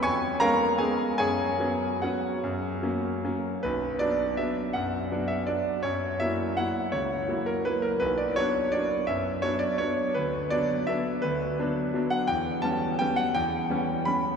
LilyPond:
<<
  \new Staff \with { instrumentName = "Grand piano" } { \time 3/4 \key b \minor \tempo 4 = 165 <cis'' gis'' cis'''>4 <ais' eis'' ais''>4 <gis' eis'' gis''>4 | <gis' cis'' gis''>2 <fis' cis'' fis''>4~ | <fis' cis'' fis''>2~ <fis' cis'' fis''>8 r8 | b'4 d''4 e''4 |
fis''4. e''8 d''4 | cis''4 e''4 fis''4 | cis''4. ais'8 b'8 ais'8 | b'8 d''8 cis''4 d''4 |
e''4 cis''8 d''8 cis''4 | b'4 d''4 e''4 | b'2~ b'8 fis''8 | g''4 a''4 g''8 fis''8 |
g''2 b''4 | }
  \new Staff \with { instrumentName = "Grand piano" } { \time 3/4 \key b \minor eis,4 <gis b cis'>4 <gis b cis'>4 | fis,4 <fis b cis'>4 <fis b cis'>4 | fis,4 <fis ais cis'>4 <fis ais cis'>4 | b,,4 <fis b d'>4 <fis b d'>4 |
fis,4 <fis b d'>4 <fis b d'>4 | fis,4 <fis ais e'>4 <fis ais e'>4 | cis,4 <fis ais e'>4 <fis ais e'>4 | b,,4 <fis b d'>4 <fis b d'>4 |
fis,4 <fis b d'>4 <fis b d'>4 | d,4 <fis b d'>4 <fis b d'>4 | d,4 <fis b d'>4 <fis b d'>4 | e,4 <g b cis'>4 <g b cis'>4 |
e,4 <g b cis'>4 <g b cis'>4 | }
>>